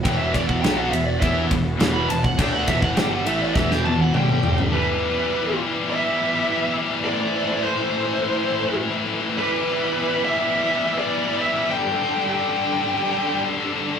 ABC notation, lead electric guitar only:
X:1
M:4/4
L:1/16
Q:1/4=103
K:Em
V:1 name="Lead electric guitar"
g e d f g f e d e2 z3 b a f | g f e f g f e d e g a f g3 z | B6 z2 e6 z2 | d4 c8 z4 |
B6 e4- e d3 e2 | g4 g8 z4 |]